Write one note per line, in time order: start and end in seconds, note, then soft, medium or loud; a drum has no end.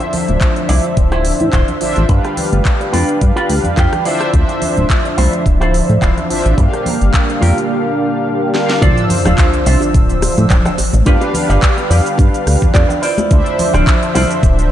0.00 1.78 F3 medium
0.00 1.78 D4 medium
0.00 1.79 C5 medium
0.00 1.79 E5 medium
0.00 muted clean electric guitar stroke medium
0.00 closed hi-hat soft
0.13 muted clean electric guitar stroke soft
0.13 open hi-hat loud
0.13 low conga medium
0.28 0.37 D1 medium
0.28 closed hi-hat soft
0.28 high conga medium
0.41 kick loud
0.41 clap loud
0.41 closed hi-hat medium
0.56 muted clean electric guitar stroke soft
0.56 closed hi-hat soft
0.69 0.79 C2 medium
0.69 0.84 E4 medium
0.69 0.84 F4 medium
0.69 0.84 D5 loud
0.69 open hi-hat loud
0.69 high conga medium
0.84 closed hi-hat soft
0.97 1.32 D1 medium
0.97 muted clean electric guitar stroke soft
0.97 kick loud
0.97 closed hi-hat medium
1.12 1.25 E4 loud
1.12 1.25 F4 medium
1.12 1.25 C5 loud
1.12 cross-stick medium
1.12 closed hi-hat soft
1.25 open hi-hat loud
1.40 1.49 A2 medium
1.40 muted clean electric guitar stroke soft
1.40 closed hi-hat soft
1.40 low conga medium
1.53 1.63 D1 loud
1.53 1.68 E4 medium
1.53 1.69 F4 medium
1.53 1.69 C5 medium
1.53 kick loud
1.53 clap loud
1.53 closed hi-hat medium
1.68 closed hi-hat soft
1.68 low conga medium
1.80 1.94 A1 soft
1.80 2.06 D4 medium
1.80 2.06 F4 medium
1.80 2.06 C5 medium
1.80 2.06 E5 loud
1.80 muted clean electric guitar stroke soft
1.80 open hi-hat loud
1.96 2.05 A1 loud
1.96 closed hi-hat soft
2.09 2.20 G2 loud
2.09 4.02 D4 medium
2.09 4.03 G4 medium
2.09 4.03 B4 medium
2.09 4.03 F5 medium
2.09 muted clean electric guitar stroke loud
2.09 kick loud
2.09 closed hi-hat medium
2.24 muted clean electric guitar stroke medium
2.24 cross-stick medium
2.24 closed hi-hat soft
2.37 muted clean electric guitar stroke soft
2.37 open hi-hat loud
2.37 low conga medium
2.52 2.61 G1 medium
2.52 closed hi-hat soft
2.52 high conga medium
2.65 kick loud
2.65 clap loud
2.65 closed hi-hat medium
2.80 muted clean electric guitar stroke soft
2.80 closed hi-hat soft
2.93 3.04 F2 medium
2.93 3.08 F4 medium
2.93 3.09 G4 medium
2.93 3.09 B4 medium
2.93 open hi-hat loud
2.93 high conga medium
3.09 closed hi-hat soft
3.21 3.32 G2 loud
3.21 muted clean electric guitar stroke soft
3.21 kick loud
3.21 closed hi-hat medium
3.36 3.49 F4 loud
3.36 3.49 G4 medium
3.36 3.50 B4 loud
3.36 closed hi-hat soft
3.49 3.60 D2 medium
3.49 open hi-hat medium
3.64 3.75 F2 soft
3.64 muted clean electric guitar stroke soft
3.64 closed hi-hat soft
3.64 low conga medium
3.77 3.88 F2 medium
3.77 3.93 F4 medium
3.77 3.93 G4 medium
3.77 3.93 B4 medium
3.77 4.04 G5 medium
3.77 kick loud
3.77 clap loud
3.77 closed hi-hat medium
3.93 cross-stick medium
3.93 closed hi-hat soft
3.93 low conga medium
4.05 4.30 D4 medium
4.05 4.40 E4 medium
4.05 4.40 F4 medium
4.05 4.31 F4 medium
4.05 4.40 C5 loud
4.05 4.31 C5 medium
4.05 4.32 D5 medium
4.05 4.31 E5 loud
4.05 open hi-hat loud
4.21 cross-stick medium
4.21 closed hi-hat soft
4.33 4.44 D2 loud
4.33 6.27 F3 medium
4.33 6.27 D4 medium
4.33 6.27 C5 medium
4.33 6.28 E5 medium
4.33 kick loud
4.33 closed hi-hat medium
4.48 muted clean electric guitar stroke medium
4.48 closed hi-hat soft
4.61 muted clean electric guitar stroke soft
4.61 open hi-hat medium
4.61 low conga medium
4.77 4.86 D1 medium
4.77 closed hi-hat soft
4.77 high conga medium
4.90 kick loud
4.90 clap loud
4.90 closed hi-hat loud
5.05 muted clean electric guitar stroke soft
5.05 closed hi-hat soft
5.17 5.28 C2 medium
5.17 5.33 E4 medium
5.17 5.33 F4 medium
5.17 5.33 C5 medium
5.17 open hi-hat loud
5.17 high conga medium
5.33 closed hi-hat soft
5.45 5.81 D1 medium
5.45 muted clean electric guitar stroke soft
5.45 kick loud
5.45 closed hi-hat medium
5.61 5.74 E4 loud
5.61 5.74 F4 loud
5.61 5.74 C5 loud
5.61 cross-stick medium
5.61 closed hi-hat soft
5.74 open hi-hat medium
5.89 5.98 A2 medium
5.89 muted clean electric guitar stroke soft
5.89 closed hi-hat soft
5.89 low conga medium
6.01 6.12 D1 loud
6.01 6.17 E4 medium
6.01 6.17 F4 medium
6.01 6.17 C5 medium
6.01 kick loud
6.01 clap loud
6.01 closed hi-hat medium
6.17 closed hi-hat soft
6.17 low conga medium
6.29 6.42 A1 soft
6.29 6.55 D4 medium
6.29 6.55 F4 medium
6.29 6.55 C5 medium
6.29 6.55 E5 loud
6.29 muted clean electric guitar stroke soft
6.29 open hi-hat loud
6.45 6.54 A1 loud
6.45 closed hi-hat soft
6.57 6.68 G2 loud
6.57 8.51 A#3 medium
6.57 8.51 D4 medium
6.57 8.51 G4 medium
6.57 8.52 F5 medium
6.57 muted clean electric guitar stroke loud
6.57 kick loud
6.57 closed hi-hat medium
6.72 muted clean electric guitar stroke medium
6.72 cross-stick medium
6.72 closed hi-hat soft
6.86 muted clean electric guitar stroke soft
6.86 open hi-hat loud
6.86 low conga medium
7.01 7.10 G1 medium
7.01 closed hi-hat soft
7.01 high conga medium
7.14 kick loud
7.14 clap loud
7.14 closed hi-hat medium
7.29 muted clean electric guitar stroke soft
7.29 closed hi-hat soft
7.41 7.53 F2 medium
7.41 7.57 F4 medium
7.41 7.57 G4 medium
7.41 7.57 A#4 medium
7.41 open hi-hat loud
7.41 high conga medium
7.58 closed hi-hat soft
8.53 8.79 D4 medium
8.53 8.79 G4 medium
8.53 8.79 A#4 medium
8.53 8.79 F5 loud
8.53 snare medium
8.70 snare medium
8.81 8.92 D2 loud
8.81 10.76 F3 medium
8.81 10.75 D4 medium
8.81 9.04 E4 loud
8.81 9.04 F4 loud
8.81 9.04 C5 medium
8.81 10.76 C5 medium
8.81 9.04 D5 loud
8.81 10.76 E6 medium
8.81 kick loud
8.81 closed hi-hat medium
8.81 high bongo medium
8.81 sub drop medium
8.81 shaker soft
8.98 closed hi-hat soft
9.10 open hi-hat loud
9.10 low conga medium
9.10 shaker medium
9.25 9.34 D1 medium
9.25 9.46 E4 medium
9.25 9.46 F4 medium
9.25 9.46 C5 medium
9.25 9.46 F5 medium
9.25 cross-stick medium
9.25 high bongo medium
9.25 shaker soft
9.38 kick loud
9.38 clap loud
9.38 closed hi-hat loud
9.38 shaker soft
9.53 closed hi-hat soft
9.66 9.77 C2 medium
9.66 9.82 E4 medium
9.66 9.82 F4 medium
9.66 9.82 C5 medium
9.66 9.82 E5 medium
9.66 open hi-hat loud
9.66 shaker medium
9.81 closed hi-hat soft
9.81 high bongo medium
9.81 shaker soft
9.94 10.30 D1 medium
9.94 muted clean electric guitar stroke soft
9.94 kick loud
9.94 closed hi-hat medium
9.94 shaker soft
10.09 closed hi-hat soft
10.09 shaker soft
10.22 cross-stick medium
10.22 open hi-hat loud
10.22 high bongo medium
10.22 shaker medium
10.38 10.46 A2 loud
10.38 closed hi-hat soft
10.38 low conga medium
10.38 shaker soft
10.50 10.61 D1 loud
10.50 muted clean electric guitar stroke medium
10.50 kick loud
10.50 clap loud
10.50 closed hi-hat medium
10.50 shaker soft
10.65 muted clean electric guitar stroke loud
10.65 cross-stick medium
10.65 closed hi-hat soft
10.65 low conga medium
10.65 shaker soft
10.78 10.91 A1 soft
10.78 muted clean electric guitar stroke soft
10.78 open hi-hat loud
10.78 high bongo medium
10.78 shaker medium
10.93 11.02 A1 loud
10.93 muted clean electric guitar stroke soft
10.93 closed hi-hat soft
10.93 high conga loud
10.93 shaker soft
11.06 11.17 G2 loud
11.06 12.99 D4 medium
11.06 11.28 F4 loud
11.06 13.00 G4 medium
11.06 11.28 G4 loud
11.06 11.28 B4 loud
11.06 13.00 B4 medium
11.06 11.28 D5 loud
11.06 13.00 F5 medium
11.06 kick loud
11.06 closed hi-hat medium
11.06 shaker soft
11.21 closed hi-hat soft
11.21 high bongo medium
11.34 open hi-hat loud
11.34 low conga medium
11.34 shaker medium
11.49 11.58 G1 medium
11.49 11.70 F4 medium
11.49 11.70 G4 medium
11.49 11.70 B4 medium
11.49 11.70 D5 medium
11.49 closed hi-hat soft
11.49 shaker soft
11.63 kick loud
11.63 clap loud
11.63 closed hi-hat loud
11.63 shaker soft
11.78 closed hi-hat soft
11.78 high bongo soft
11.90 12.01 F2 medium
11.90 12.06 F4 medium
11.90 12.06 G4 medium
11.90 12.06 B4 medium
11.90 12.06 D5 loud
11.90 open hi-hat loud
11.90 shaker medium
12.06 closed hi-hat soft
12.06 shaker soft
12.18 12.29 G2 loud
12.18 muted clean electric guitar stroke soft
12.18 kick loud
12.18 closed hi-hat medium
12.18 high bongo medium
12.18 shaker soft
12.34 closed hi-hat soft
12.34 shaker soft
12.47 12.57 D2 medium
12.47 cross-stick medium
12.47 open hi-hat loud
12.47 shaker medium
12.62 12.72 F2 soft
12.62 kick medium
12.62 closed hi-hat soft
12.62 low conga medium
12.62 shaker soft
12.74 12.85 F2 loud
12.74 13.01 D5 medium
12.74 muted clean electric guitar stroke medium
12.74 kick loud
12.74 clap loud
12.74 closed hi-hat medium
12.74 high bongo medium
12.74 shaker soft
12.89 muted clean electric guitar stroke loud
12.89 closed hi-hat soft
12.89 low conga medium
12.89 shaker soft
13.02 13.59 E4 medium
13.02 13.59 F4 medium
13.02 13.59 C5 medium
13.02 13.59 D5 loud
13.02 open hi-hat loud
13.02 shaker medium
13.18 closed hi-hat soft
13.18 high bongo medium
13.18 high conga medium
13.18 shaker soft
13.30 13.41 D2 loud
13.30 14.72 F3 medium
13.30 14.72 D4 medium
13.30 14.72 C5 medium
13.30 14.72 E5 loud
13.30 kick loud
13.30 closed hi-hat medium
13.30 shaker soft
13.46 closed hi-hat soft
13.59 open hi-hat loud
13.59 low conga medium
13.59 shaker medium
13.73 13.83 D1 medium
13.73 13.95 E4 medium
13.73 13.95 F4 medium
13.73 13.95 C5 medium
13.73 13.95 D5 loud
13.73 cross-stick medium
13.73 closed hi-hat soft
13.73 high bongo medium
13.73 shaker soft
13.87 kick loud
13.87 clap loud
13.87 closed hi-hat medium
13.87 shaker soft
14.03 closed hi-hat soft
14.14 14.25 C2 medium
14.14 14.30 E4 medium
14.14 14.30 F4 medium
14.14 14.30 C5 medium
14.14 14.30 D5 loud
14.14 open hi-hat loud
14.14 high bongo medium
14.14 shaker medium
14.31 closed hi-hat soft
14.31 shaker soft
14.43 14.72 D1 medium
14.43 muted clean electric guitar stroke soft
14.43 kick loud
14.43 closed hi-hat medium
14.43 shaker soft
14.59 closed hi-hat soft
14.59 shaker soft